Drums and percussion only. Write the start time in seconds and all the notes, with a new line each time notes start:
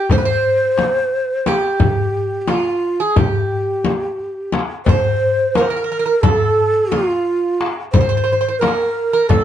0.10 darbuka dum, frame drum
0.78 darbuka tek, frame drum
1.46 darbuka tek, frame drum
1.80 frame drum, darbuka dum
2.48 darbuka tek, frame drum
3.16 frame drum, darbuka dum
3.85 darbuka tek, frame drum
4.19 darbuka ka
4.52 darbuka tek, frame drum
4.86 frame drum, darbuka dum
5.55 darbuka tek, frame drum
6.23 darbuka dum, frame drum
6.92 darbuka tek, frame drum
7.61 darbuka tek
7.94 darbuka dum, frame drum
8.62 darbuka tek, frame drum
9.30 darbuka dum, frame drum